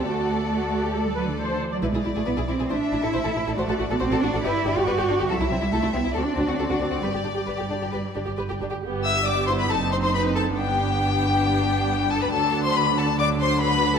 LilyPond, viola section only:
\new Staff \with { instrumentName = "Viola section" } { \time 4/4 \key g \major \tempo 4 = 137 << { fis'4 fis'8. g'16 a'8 b'8 c''8. d''16 | e'16 e'16 e'16 e'16 e'16 e'16 e'16 e'16 e'16 r16 e'16 e'16 e'16 e'16 e'16 e'16 | fis'16 fis'16 fis'16 fis'16 fis'16 fis'16 fis'16 fis'16 g'16 r16 g'16 g'16 g'16 g'16 g'16 g'16 | e'16 e'16 e'16 e'16 e'16 e'16 e'16 e'16 fis'16 r16 fis'16 fis'16 fis'16 fis'16 fis'16 fis'16 |
g'16 g'16 g'16 g'16 g'16 g'16 g'16 g'16 g'16 r16 g'16 g'16 g'16 g'16 g'16 g'16 | b4 b4 c'2 | b1 | fis2 fis2 | } \\ { r1 | r1 | r1 | r1 |
r1 | g'4 g'8 e'8 dis'2 | d'1 | d'2 d'2 | } >> }